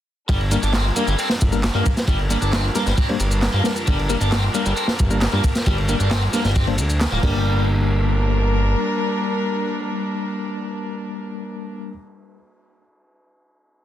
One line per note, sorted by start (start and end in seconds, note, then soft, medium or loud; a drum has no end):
0.29 0.58 G1 loud
0.29 7.19 G3 medium
0.29 0.38 G3 loud
0.29 7.19 D4 medium
0.29 7.19 A#4 medium
0.29 kick loud
0.29 ride loud
0.29 shaker soft
0.41 ride soft
0.51 0.57 G3 medium
0.51 0.58 G3 medium
0.51 0.58 A#3 medium
0.51 0.58 D4 medium
0.51 0.58 A#4 loud
0.51 ride medium
0.51 shaker medium
0.63 0.91 G1 loud
0.63 0.71 D4 loud
0.63 ride soft
0.63 shaker soft
0.73 0.85 C4 medium
0.73 snare loud
0.73 clap loud
0.73 ride medium
0.73 shaker soft
0.96 1.03 G3 medium
0.96 1.07 A#3 medium
0.96 1.03 A#3 medium
0.96 1.03 D4 medium
0.96 1.03 A#4 medium
0.96 ride medium
0.96 shaker medium
1.08 1.16 G1 medium
1.08 1.13 G3 loud
1.08 shaker soft
1.19 1.27 C4 medium
1.19 ride medium
1.19 shaker soft
1.30 snare medium
1.41 1.70 G1 loud
1.41 kick loud
1.41 ride medium
1.41 shaker medium
1.52 1.59 G3 medium
1.52 1.59 A#3 medium
1.52 1.59 D4 medium
1.52 1.59 A#4 loud
1.52 shaker soft
1.63 snare loud
1.63 clap loud
1.63 ride medium
1.63 shaker soft
1.75 1.83 G2 medium
1.75 1.85 G3 medium
1.75 1.85 A#3 medium
1.75 1.83 A#3 loud
1.75 1.85 D4 medium
1.75 1.85 A#4 loud
1.86 kick loud
1.86 ride medium
1.86 shaker medium
1.97 snare medium
1.97 shaker soft
2.07 2.37 G1 loud
2.07 2.17 G3 loud
2.07 kick loud
2.07 ride medium
2.07 shaker soft
2.19 ride soft
2.30 2.36 G3 medium
2.30 2.37 G3 medium
2.30 2.37 A#3 medium
2.30 2.37 D4 medium
2.30 2.37 A#4 medium
2.30 ride medium
2.30 shaker medium
2.42 2.71 G1 loud
2.42 2.50 D4 loud
2.42 shaker soft
2.53 2.64 C4 medium
2.53 snare loud
2.53 clap loud
2.53 ride medium
2.53 shaker soft
2.64 ride medium
2.75 2.82 G3 loud
2.75 2.82 A#3 medium
2.75 2.86 A#3 medium
2.75 2.82 D4 medium
2.75 2.82 A#4 loud
2.75 snare soft
2.75 ride medium
2.75 shaker medium
2.87 2.95 G1 medium
2.87 2.92 G3 loud
2.87 snare soft
2.87 shaker soft
2.98 3.06 C4 medium
2.98 kick loud
2.98 ride medium
2.98 shaker soft
3.09 3.15 G3 loud
3.09 3.15 A#3 medium
3.09 3.15 D4 medium
3.09 3.15 C5 loud
3.09 ride soft
3.19 3.49 G1 loud
3.19 ride medium
3.19 shaker medium
3.31 shaker soft
3.42 snare loud
3.42 clap loud
3.42 ride medium
3.42 shaker soft
3.54 3.62 G2 medium
3.54 3.62 A#3 loud
3.64 3.71 G3 medium
3.64 3.71 A#3 medium
3.64 3.71 D4 medium
3.64 3.71 A#4 medium
3.64 snare loud
3.64 ride medium
3.64 shaker medium
3.76 shaker soft
3.87 4.16 G1 loud
3.87 3.96 G3 loud
3.87 kick loud
3.87 ride medium
3.87 shaker soft
3.99 ride soft
4.10 4.15 G3 medium
4.10 4.16 G3 loud
4.10 4.16 A#3 medium
4.10 4.16 D4 medium
4.10 4.16 A#4 loud
4.10 ride medium
4.10 shaker medium
4.21 4.50 G1 loud
4.21 4.29 D4 loud
4.21 ride soft
4.21 shaker soft
4.32 4.43 C4 medium
4.32 snare loud
4.32 clap loud
4.32 ride medium
4.32 shaker soft
4.54 4.61 G3 medium
4.54 4.65 A#3 medium
4.54 4.61 A#3 medium
4.54 4.61 D4 medium
4.54 4.61 A#4 medium
4.54 ride medium
4.54 shaker medium
4.66 4.74 G1 loud
4.66 4.71 G3 loud
4.66 shaker soft
4.77 4.85 C4 medium
4.77 ride medium
4.77 shaker soft
4.88 snare medium
4.99 5.28 G1 loud
4.99 kick loud
4.99 ride medium
4.99 shaker medium
5.10 5.17 G3 medium
5.10 5.17 A#3 medium
5.10 5.17 D4 medium
5.10 5.17 A#4 loud
5.10 shaker soft
5.21 snare loud
5.21 clap loud
5.21 ride loud
5.21 shaker soft
5.33 5.41 G2 medium
5.33 5.43 G3 medium
5.33 5.41 A#3 loud
5.33 5.43 A#3 medium
5.33 5.43 D4 medium
5.33 5.43 A#4 loud
5.44 kick medium
5.44 ride medium
5.44 shaker medium
5.55 snare medium
5.55 shaker soft
5.66 5.95 G1 loud
5.66 5.75 G3 loud
5.66 kick loud
5.66 ride medium
5.66 shaker soft
5.78 ride soft
5.89 5.94 G3 medium
5.89 5.95 G3 medium
5.89 5.95 A#3 medium
5.89 5.95 D4 medium
5.89 5.95 A#4 medium
5.89 ride medium
5.89 shaker medium
6.00 6.29 G1 loud
6.00 6.08 D4 loud
6.00 shaker soft
6.11 6.22 C4 medium
6.11 snare loud
6.11 clap loud
6.11 ride medium
6.11 shaker soft
6.22 ride soft
6.33 6.40 G3 medium
6.33 6.44 A#3 medium
6.33 6.40 A#3 medium
6.33 6.40 D4 medium
6.33 6.40 A#4 loud
6.33 snare soft
6.33 ride medium
6.33 shaker medium
6.45 6.80 G1 medium
6.45 6.50 G3 loud
6.45 snare soft
6.45 shaker soft
6.56 6.64 C4 medium
6.56 kick loud
6.56 ride medium
6.56 shaker soft
6.67 6.73 G3 loud
6.67 6.74 A#3 medium
6.67 6.73 D4 medium
6.67 6.73 C5 loud
6.67 ride soft
6.78 7.07 D2 medium
6.78 ride medium
6.78 shaker medium
6.90 shaker soft
7.01 snare loud
7.01 clap loud
7.01 ride loud
7.01 shaker soft
7.12 7.20 D1 loud
7.12 7.20 A#3 loud
7.23 8.76 G1 loud
7.23 7.65 G3 medium
7.23 11.92 G3 medium
7.23 11.80 G3 medium
7.23 11.92 A#3 medium
7.23 11.92 D4 medium
7.23 11.80 D4 medium
7.23 11.92 A#4 loud
7.23 11.80 A#4 medium
7.23 kick loud
7.23 crash medium